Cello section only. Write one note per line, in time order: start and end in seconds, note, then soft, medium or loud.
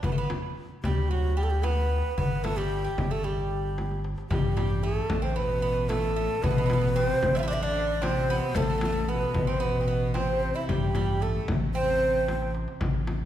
4.29 4.79 G2 medium
4.84 5.36 A2 medium
5.38 5.90 B2 medium
5.90 6.43 A2 medium
6.43 6.92 B2 loud
6.95 7.48 C3 medium
7.49 7.62 D3 medium
7.63 7.99 D3 medium
8.04 8.49 C3 medium
8.49 8.56 B2 medium
8.58 9.09 A2 medium
9.10 9.49 B2 medium
9.49 9.62 C3 medium
9.61 10.14 B2 medium
10.14 10.68 C3 medium
10.68 11.21 G2 medium
11.24 11.49 A2 medium
11.77 12.51 C3 medium